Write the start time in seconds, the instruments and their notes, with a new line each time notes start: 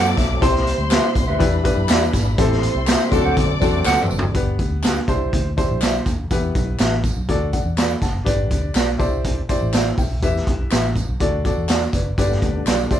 Already playing: fingered electric bass F#2, tonewheel organ F#3 A3 C4 D4, upright piano C4 D4 F#4 B4 A5, string section D5 D6
0.17 fingered electric bass B1, upright piano E5, kick, snare, closed hi-hat, tambourine
0.41 fingered electric bass C2, tonewheel organ G3, upright piano C4 E4 G4 C5, string section C5 C6, kick, closed hi-hat, tambourine
0.56 snare
0.67 closed hi-hat, tambourine
0.78 fingered electric bass D2
0.91 clean electric guitar G4 B4 E5, snare, clap, closed hi-hat, tambourine
1.15 fingered electric bass C2, kick, closed hi-hat, tambourine
1.27 fingered electric bass D2, clean electric guitar G4 B4 E5
1.39 fingered electric bass E2, upright piano D4 E4 G4 B4, tonewheel organ D4, string section B4 B5, kick, closed hi-hat, tambourine
1.64 upright piano D4 E4 G4 B4, kick, closed hi-hat, tambourine
1.77 fingered electric bass F#2
1.89 fingered electric bass E2, clean electric guitar G4 D5 E5, snare, clap, closed hi-hat, tambourine
2.13 fingered electric bass G#1, kick, snare, closed hi-hat, tambourine
2.38 fingered electric bass A1, tonewheel organ A3 C4, upright piano C4 E4 G4 A4, string section C5 C6, kick, closed hi-hat, tambourine
2.52 snare
2.63 closed hi-hat, tambourine
2.75 fingered electric bass C2
2.87 clean electric guitar G4 C5 E5, snare, clap, closed hi-hat, tambourine
3.11 fingered electric bass D2, tonewheel organ F#3 D4, upright piano C4 D4 F#4 A4, string section D5 D6, kick, closed hi-hat, tambourine
3.24 fingered electric bass D2, clean electric guitar A4 C5 F#5
3.36 fingered electric bass D3, kick, closed hi-hat, tambourine
3.61 fingered electric bass E2, upright piano C4 D4 F#4 A4, kick, closed hi-hat, tambourine
3.85 fingered electric bass D2, clean electric guitar A4 C5 F#5, snare, clap, tambourine
4.02 mid tom
4.10 fingered electric bass F#1, tambourine
4.19 floor tom
4.35 fingered electric bass G1, upright piano B3 D4 G4 B4, kick, closed hi-hat, tambourine
4.59 fingered electric bass D2, kick, closed hi-hat, tambourine
4.83 clean electric guitar D4 G4 B4, snare, clap, closed hi-hat, tambourine
5.08 fingered electric bass C2, upright piano D4 E4 G4 C5, kick, closed hi-hat, tambourine
5.33 fingered electric bass D2, kick, closed hi-hat
5.57 upright piano D4 E4 G4 C5, kick, closed hi-hat, tambourine
5.70 fingered electric bass B1
5.81 clean electric guitar G4 D5 E5, snare, clap, closed hi-hat, tambourine
6.06 fingered electric bass D#2, kick, closed hi-hat, tambourine
6.31 fingered electric bass E2, upright piano B3 E4 G4 B4, kick, closed hi-hat, tambourine
6.55 fingered electric bass B1, kick, closed hi-hat, tambourine
6.79 fingered electric bass A1, clean electric guitar G4 B4 E5, snare, clap, closed hi-hat, tambourine
7.04 kick, closed hi-hat, tambourine
7.16 fingered electric bass B1
7.28 fingered electric bass D2, upright piano D4 F#4 A4 D5, kick, closed hi-hat, tambourine
7.53 upright piano D5 F#5, kick, closed hi-hat, tambourine
7.65 fingered electric bass E2
7.77 clean electric guitar F#4 A4 D5, upright piano B5, snare, clap, closed hi-hat, tambourine
8.02 fingered electric bass F#1, upright piano F#5 A5, kick, snare, closed hi-hat, tambourine
8.24 fingered electric bass G1, upright piano D4 G4 B4 D5, kick, closed hi-hat, tambourine
8.51 fingered electric bass D2, kick, closed hi-hat, tambourine
8.75 fingered electric bass B1, clean electric guitar G4 B4 D5, snare, clap, closed hi-hat, tambourine
8.98 fingered electric bass C2, upright piano E4 G4 C5 D5, kick, closed hi-hat, tambourine
9.24 kick, closed hi-hat
9.49 upright piano E4 G4 C5 D5, kick, closed hi-hat, tambourine
9.61 fingered electric bass A1
9.73 clean electric guitar E4 G4 D5, upright piano C5 E5, snare, clap, closed hi-hat, tambourine
9.98 fingered electric bass B1, upright piano E5 G5, kick, open hi-hat, tambourine
10.22 fingered electric bass E2, upright piano E4 G4 B4 E5, kick, closed hi-hat, tambourine
10.36 snare
10.47 fingered electric bass B1, kick, closed hi-hat
10.71 fingered electric bass A1, clean electric guitar G4 B4 E5, snare, clap, closed hi-hat, tambourine
10.96 kick, closed hi-hat, tambourine
11.08 fingered electric bass B1
11.20 fingered electric bass D2, upright piano D4 F#4 A4 D5, kick, closed hi-hat, tambourine
11.44 upright piano D4 F#4 A4 D5, kick, closed hi-hat, tambourine
11.57 fingered electric bass E2
11.68 clean electric guitar F#4 A4 D5, upright piano D5 F#5, snare, clap, closed hi-hat, tambourine
11.93 fingered electric bass F#1, upright piano B4 D5, kick, closed hi-hat, tambourine
12.18 fingered electric bass G1, tonewheel organ D3 G3 B3 D4, upright piano D4 G4 B4 D5, kick, closed hi-hat, tambourine
12.31 snare
12.42 fingered electric bass D2, kick, closed hi-hat, tambourine
12.66 fingered electric bass B1, clean electric guitar G4 B4 D5, snare, clap, closed hi-hat, tambourine
12.91 fingered electric bass C2, tonewheel organ E3, upright piano E4 G4 C5 D5, kick, closed hi-hat, tambourine